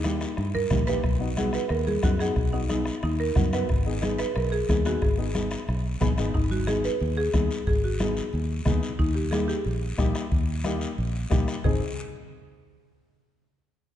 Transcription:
Already playing: fingered electric bass D#2
0.04 upright piano A#3 D#4 G4, marimba D#4, bombo rim, high conga, short guiro
0.21 bombo rim, short guiro
0.37 fingered electric bass G2, bombo rim, long guiro
0.55 marimba A#4, high conga
0.70 fingered electric bass A#1, upright piano A#3 D#4 G4, bombo low, bombo rim, high conga, low conga, short guiro
0.87 upright piano A#3 D#4 G4, marimba B4, bombo rim, short guiro
1.04 fingered electric bass B1, bombo low, bombo rim, long guiro
1.19 upright piano B3 D#4 F#4
1.37 upright piano B3 D#4 F#4, marimba G#4, bombo rim, high conga, short guiro
1.53 marimba B4, bombo rim, short guiro
1.69 fingered electric bass D#2, marimba A#4, bombo rim, long guiro
1.87 marimba G#4, high conga
2.02 fingered electric bass F#2, upright piano B3 D#4 F#4, marimba F#4, bombo low, bombo rim, high conga, short guiro
2.19 upright piano B3 D#4 F#4, marimba G#4, bombo rim, short guiro
2.36 fingered electric bass B1, bombo low, bombo rim, long guiro
2.52 upright piano B3 D#4 F#4, marimba D#4
2.69 upright piano B3 D#4 G#4, marimba D#4, bombo rim, high conga, short guiro
2.86 bombo rim, short guiro
3.03 fingered electric bass D#2, marimba D#4, bombo rim, long guiro
3.20 marimba A#4
3.36 fingered electric bass F#2, upright piano B3 D#4 F#4, bombo low, bombo rim, high conga, low conga, short guiro
3.53 upright piano B3 D#4 F#4, marimba B4, bombo rim, short guiro
3.69 fingered electric bass G#1, bombo low, bombo rim, long guiro
3.86 upright piano B3 D#4 G#4
4.01 upright piano B3 D#4 G#4, marimba G#4, bombo rim, high conga, short guiro
4.18 marimba B4, bombo rim, short guiro
4.35 fingered electric bass B1, marimba A#4, bombo rim, long guiro
4.52 marimba G#4
4.69 fingered electric bass D#2, upright piano B3 D#4 G#4, marimba G#4, bombo low, bombo rim, high conga, short guiro
4.85 upright piano B3 D#4 G#4, marimba F#4, bombo rim, short guiro
5.02 fingered electric bass G#1, marimba G#4, bombo low, bombo rim, long guiro
5.18 upright piano B3 D#4 G#4
5.35 upright piano B3 D#4 G#4, bombo rim, high conga, short guiro
5.51 bombo rim, short guiro
5.68 fingered electric bass B1, bombo rim, long guiro
6.01 fingered electric bass A#1, upright piano B3 D#4 G#4 B5, bombo low, bombo rim, high conga, low conga, short guiro
6.18 fingered electric bass G#1, upright piano B3 D#4 G#4, bombo rim, short guiro
6.34 fingered electric bass G#1, marimba D#4, bombo low, long guiro
6.51 marimba F#4, high conga
6.67 upright piano B3 D#4 G#4, marimba G#4, bombo rim, high conga, short guiro
6.84 marimba B4, short guiro
7.01 fingered electric bass D#2, long guiro
7.17 marimba G#4
7.34 fingered electric bass D#2, upright piano B3 D#4 G#4, bombo low, bombo rim, high conga, short guiro
7.51 short guiro
7.67 fingered electric bass G#1, marimba G#4, bombo low, long guiro
7.84 marimba F#4
7.99 upright piano B3 D#4 G#4, marimba G#4, bombo rim, high conga, short guiro
8.17 short guiro
8.33 fingered electric bass D#2, long guiro
8.65 fingered electric bass D#2, upright piano B3 D#4 G#4, bombo low, bombo rim, high conga, low conga, short guiro
8.83 short guiro
8.99 fingered electric bass D#2, marimba D#4, bombo low, long guiro
9.15 marimba G4
9.31 upright piano A#3 D#4 G4, marimba G#4, bombo rim, high conga, short guiro
9.48 marimba G4, short guiro
9.65 fingered electric bass A#1, long guiro
9.97 fingered electric bass A#1, upright piano A#3 D#4 G4, bombo low, bombo rim, high conga, short guiro
10.15 bombo rim, short guiro
10.32 fingered electric bass D#2, bombo low, long guiro
10.64 upright piano A#3 D#4 G4, bombo rim, high conga, short guiro
10.81 short guiro
10.98 fingered electric bass A#1, long guiro
11.30 fingered electric bass A#1, upright piano A#3 D#4 G4, bombo low, bombo rim, high conga, low conga, short guiro
11.48 bombo rim, short guiro
11.64 fingered electric bass G#1, upright piano C4 D#4 G#4, marimba G#4, bombo low, low conga, long guiro

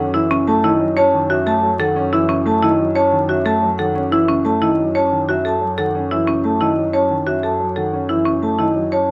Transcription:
Already playing: double bass F#2, grand piano C#4
0.14 grand piano E3, marimba E4, vibraphone E5
0.30 grand piano C#3, marimba C#4
0.47 grand piano A3, vibraphone A5
0.63 grand piano D#3, marimba E4, vibraphone D#5
0.80 grand piano F#3
0.96 grand piano C#4, marimba C#5, vibraphone A5
1.13 grand piano D#3
1.29 grand piano C#4, marimba F#4, vibraphone E5
1.46 grand piano A3, marimba A4, vibraphone A5
1.62 grand piano F#3
1.79 grand piano D#3, marimba A4, vibraphone F#5
1.96 grand piano C#4
2.12 grand piano E3, marimba E4, vibraphone E5
2.29 grand piano C#3, marimba C#4
2.46 grand piano A3, vibraphone A5
2.62 grand piano D#3, marimba E4, vibraphone D#5
2.79 grand piano F#3
2.95 grand piano C#4, marimba C#5, vibraphone A5
3.12 grand piano D#3
3.28 grand piano C#4, marimba F#4, vibraphone E5
3.45 grand piano A3, marimba A4, vibraphone A5
3.62 grand piano F#3
3.78 grand piano D#3, marimba A4, vibraphone F#5
3.95 grand piano C#4
4.11 grand piano E3, marimba E4, vibraphone E5
4.28 grand piano C#3, marimba C#4
4.45 grand piano A3, vibraphone A5
4.62 grand piano D#3, marimba E4, vibraphone D#5
4.78 grand piano F#3
4.95 grand piano C#4, marimba C#5, vibraphone A5
5.11 grand piano D#3
5.28 grand piano C#4, marimba F#4, vibraphone E5
5.45 marimba A4, vibraphone A5
5.61 grand piano F#3
5.78 grand piano D#3, marimba A4, vibraphone F#5
5.95 grand piano C#4
6.11 grand piano E3, marimba E4, vibraphone E5
6.27 grand piano C#3, marimba C#4
6.44 grand piano A3, vibraphone A5
6.60 grand piano D#3, marimba E4, vibraphone D#5
6.77 grand piano F#3
6.93 grand piano C#4, marimba C#5, vibraphone A5
7.10 grand piano D#3
7.27 grand piano C#4, marimba F#4, vibraphone E5
7.43 marimba A4, vibraphone A5
7.59 grand piano F#3
7.76 grand piano D#3, marimba A4, vibraphone F#5
7.93 grand piano C#4
8.09 grand piano E3, marimba E4, vibraphone E5
8.25 grand piano C#3, marimba C#4
8.42 grand piano A3, vibraphone A5
8.59 grand piano D#3, marimba E4, vibraphone D#5
8.76 grand piano F#3
8.92 grand piano C#4, marimba C#5, vibraphone A5

